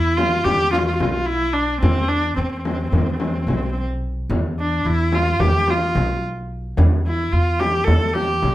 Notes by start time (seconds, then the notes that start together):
Already playing: E2 E4
0.17 F4, frame drum
0.44 E2 G4, frame drum
0.72 F4, frame drum
0.80 F4
0.87 F4
0.95 F4
1.00 B1 F4, frame drum
1.09 F4
1.26 E4
1.53 D4
1.81 E2 C4, frame drum
2.08 D4
2.36 E2 C4
2.43 C4
2.51 C4
2.58 C4
2.65 C4, frame drum
2.73 C4
2.82 C4
2.88 E2 C4
2.93 C4, frame drum
3.03 C4
3.12 C4
3.19 C4, frame drum
3.26 C4
3.33 C4
3.41 C4
3.47 B1 C4, frame drum
3.55 C4
3.64 C4
3.71 C4
3.79 C4
4.29 E2, frame drum, darbuka dum
4.60 D4
4.85 E2 E4
5.12 F4, darbuka tek, frame drum
5.40 E2 G4, frame drum, darbuka dum
5.67 F4, darbuka tek, frame drum
5.95 B1, darbuka tek, frame drum
6.64 darbuka ka
6.77 E2, frame drum, darbuka dum
7.07 E4
7.32 E2 F4
7.60 G4, darbuka tek, frame drum
7.84 E2 A4, frame drum, darbuka dum
8.08 A4
8.13 G4, darbuka tek, frame drum
8.43 B1, darbuka tek, frame drum